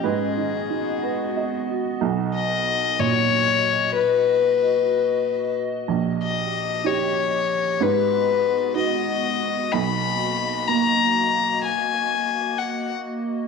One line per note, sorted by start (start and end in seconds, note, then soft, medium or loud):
0.00 1.98 G#2 medium
0.00 0.99 B4 medium
0.00 1.97 D#5 medium
0.04 2.02 B3 medium
0.04 2.01 F#4 medium
0.04 1.53 G#4 medium
0.37 0.90 D#3 soft
0.70 1.23 D#4 soft
1.03 1.56 B4 soft
1.37 1.89 D#5 soft
1.70 2.02 F#4 soft
2.01 3.92 B1 medium
2.01 5.85 F#4 medium
2.01 7.77 D#5 medium
2.35 3.01 D#5 medium
2.99 5.89 A#2 medium
2.99 3.94 C#5 loud
3.95 5.53 B4 medium
5.88 7.76 A#1 medium
5.88 7.81 G4 medium
6.23 6.87 D#5 medium
6.84 7.76 D#4 medium
6.84 7.77 G4 medium
6.84 7.83 C#5 medium
7.80 9.69 G#2 medium
7.80 9.72 B3 medium
7.80 13.48 F#4 medium
7.80 8.76 B4 loud
7.80 13.48 D#5 medium
8.75 9.69 D#4 medium
8.75 9.69 F#4 medium
8.75 9.74 D#5 medium
9.72 11.59 B1 medium
9.72 13.48 A#3 medium
9.72 10.70 B5 loud
10.68 13.48 A#3 medium
10.68 11.63 A#5 loud
11.64 12.59 G#5 loud
12.58 12.90 F#5 medium